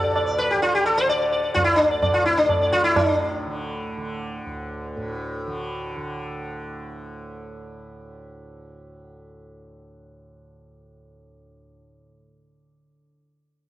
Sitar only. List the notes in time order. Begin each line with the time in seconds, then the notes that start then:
Already playing: A4
0.03 D5
0.15 D5
0.26 D5
0.38 B4
0.51 G4
0.62 F4
0.75 G4
0.86 A4
0.97 C5
1.09 D5
1.21 D5
1.32 D5
1.43 D5
1.54 F4
1.64 E4
1.76 D4
1.91 D5
2.02 D5
2.14 F4
2.25 E4
2.37 D4
2.49 D5
2.61 D5
2.72 F4
2.84 E4
2.96 D4